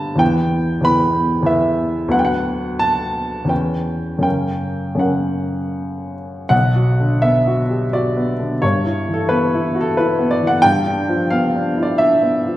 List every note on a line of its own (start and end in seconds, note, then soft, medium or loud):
0.00 0.23 G2 medium
0.00 0.22 D3 soft
0.00 0.18 B3 soft
0.00 0.20 B4 soft
0.00 0.19 G5 medium
0.00 0.20 A5 medium
0.00 0.23 B5 medium
0.16 0.80 E2 soft
0.16 0.81 E3 soft
0.16 0.81 B3 soft
0.16 0.84 G5 medium
0.20 0.82 B4 soft
0.81 1.41 E2 soft
0.81 1.42 E3 soft
0.81 1.44 B3 soft
0.81 1.45 B4 soft
0.81 1.48 B5 loud
1.43 2.09 E2 medium
1.43 2.09 E3 soft
1.43 2.09 B3 soft
1.43 2.09 B4 soft
1.43 2.13 E5 medium
2.08 3.44 D2 medium
2.08 3.44 F#3 soft
2.08 3.45 B3 soft
2.08 3.45 B4 soft
2.08 2.19 F#5 medium
2.19 2.26 G5 medium
2.25 2.80 F#5 medium
2.79 3.50 A5 medium
3.45 4.19 E2 soft
3.45 4.20 E3 soft
3.45 4.20 C#4 soft
3.49 4.22 B4 soft
3.49 4.21 G5 medium
4.19 4.94 F#2 soft
4.19 4.95 C#3 soft
4.19 4.96 C#4 soft
4.19 4.97 A#4 soft
4.23 5.00 G5 medium
4.95 6.44 F#2 soft
4.95 6.45 C#3 soft
4.95 6.46 C#4 soft
4.95 6.46 A#4 soft
4.99 6.14 F#5 medium
6.49 8.58 B1 medium
6.49 7.22 F#5 medium
6.75 7.14 F#4 soft
7.00 7.38 D3 soft
7.22 7.61 B3 medium
7.22 7.93 E5 medium
7.47 7.84 F#4 soft
7.70 7.94 G4 soft
7.93 8.31 F#4 medium
7.93 8.63 D5 medium
8.17 8.54 B3 soft
8.39 8.62 D3 soft
8.62 10.59 G2 medium
8.62 9.12 C#5 medium
8.85 9.21 E4 soft
9.09 9.44 E3 medium
9.14 9.30 A4 medium
9.29 9.66 B3 soft
9.29 9.79 B4 medium
9.54 9.89 E4 medium
9.75 9.97 F#4 medium
9.81 9.97 A4 medium
9.97 10.33 E4 medium
9.97 10.30 B4 medium
10.19 10.54 B3 medium
10.31 10.47 D5 medium
10.42 10.64 E3 soft
10.47 10.64 F#5 medium
10.62 12.57 G2 medium
10.62 11.30 G5 loud
10.86 11.22 D4 soft
11.09 11.45 F3 soft
11.30 11.68 B3 medium
11.30 11.82 F5 medium
11.55 11.91 D4 soft
11.77 12.00 E4 soft
11.83 12.00 D5 medium
11.98 12.37 D4 medium
11.98 12.57 E5 medium
12.23 12.57 B3 soft
12.47 12.57 F3 soft